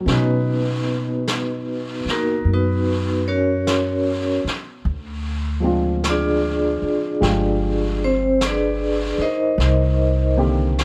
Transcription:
Already playing: upright piano A#4
0.00 upright piano F#3
0.06 upright bass B2, upright piano B2 C#4, brush sweep, snare
0.11 vibraphone B3 D#4 F#4 B4, upright piano D#4
1.28 brush sweep, snare, hi-hat pedal
2.05 muted upright bass stroke, snare
2.10 vibraphone A#3 D#4 F#4 A#4
2.45 upright bass F#2, brush sweep
2.53 vibraphone B3 D#4 F#4 B4
3.28 vibraphone C#4 F#4 A#4 C#5
3.67 brush sweep, snare, hi-hat pedal
4.45 muted upright bass stroke, snare
4.85 upright bass D2, brush sweep
5.60 upright piano F3 G#3 C4 D4
5.66 upright piano F4
6.04 brush sweep, snare, hi-hat pedal
6.09 vibraphone D4 F4 G#4 D5
6.82 muted upright bass stroke
7.20 upright bass G1, upright piano F3 G3 G#3 F4 G5, brush sweep, snare
8.04 vibraphone C4 C5
8.41 brush sweep, snare, hi-hat pedal
8.46 vibraphone D4 G#4 B4 D5
9.18 vibraphone D#4 D#5, muted upright bass stroke
9.22 vibraphone A#4 C5
9.58 upright bass C2, brush sweep, snare
10.37 upright piano D3 D#3 A#3 C4 G4
10.79 brush sweep, snare, hi-hat pedal

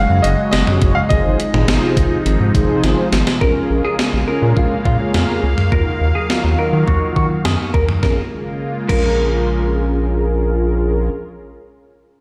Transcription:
Already playing: analog synth pad C#3 F#3 G#3 F#4, grand piano F5
0.10 analog synth bass F#2
0.22 analog synth bass F#1, grand piano D#5, closed hi-hat
0.51 analog synth bass F#1, grand piano D#5, snare, closed hi-hat
0.67 analog polysynth C#4 F#4 G#4 C#5, mid tom
0.82 analog synth bass F#1, kick, closed hi-hat
0.95 grand piano F5
1.09 analog synth bass G#1, analog synth pad C3 F3 D#4, analog polysynth D#4 F4 G#4 C5, grand piano D#5, kick, closed hi-hat
1.25 analog synth bass G#1
1.40 closed hi-hat
1.54 analog synth bass G#1, analog polysynth D#4 F4 G#4 C5, mid tom
1.68 analog synth bass G#1, snare, closed hi-hat
1.97 analog synth bass G#1, kick, closed hi-hat
2.26 analog synth bass G#1, closed hi-hat
2.40 analog synth bass G#2
2.55 analog synth bass G#1, analog polysynth D#4 F4 G#4 C5, kick, closed hi-hat
2.84 analog synth bass G#1, snare, closed hi-hat
3.12 analog synth bass G#1, snare, closed hi-hat
3.27 snare
3.41 analog synth bass A#1, analog synth pad C#3 G#3 A#3 F5, analog polysynth C#4 F4 G#4 A#4, clean electric guitar A#4, kick
3.70 analog synth bass A#1
3.85 clean electric guitar G#4
3.99 snare
4.13 analog synth bass A#1
4.28 analog polysynth C#4 F4 G#4 A#4, clean electric guitar A#4
4.42 analog synth bass A#2
4.56 analog synth bass A#1, clean electric guitar F4, kick
4.85 analog synth bass A#2, clean electric guitar F4, kick
5.00 analog polysynth C#4 F4 G#4 A#4
5.14 analog synth bass F2, snare
5.43 analog synth bass C#2
5.58 mid tom
5.72 analog synth bass D#2, analog synth pad D#3 F#3, analog polysynth D#4 F4 F#4 A#4, clean electric guitar A#4, kick
6.01 analog synth bass D#2
6.15 clean electric guitar G#4
6.30 analog polysynth D#4 F4 F#4 A#4, snare
6.44 analog synth bass D#2
6.59 analog polysynth D#4 F4 F#4 A#4, clean electric guitar A#4
6.73 analog synth bass D#3
6.88 analog synth bass D#2, clean electric guitar F#4, kick
7.16 analog synth bass D#3, clean electric guitar F#4, kick
7.45 analog synth bass F#2, clean electric guitar G#4, snare
7.74 analog synth bass D#2, clean electric guitar A#4, kick
7.89 mid tom
8.03 analog synth bass A#1, analog synth pad C#3 G#3 A#3 F4, analog polysynth C#4 F4 G#4 A#4, clean electric guitar A#4, kick, snare
8.89 analog synth bass A#1, analog polysynth C#4 F4 G#4 A#4, clean electric guitar A#4, kick, crash

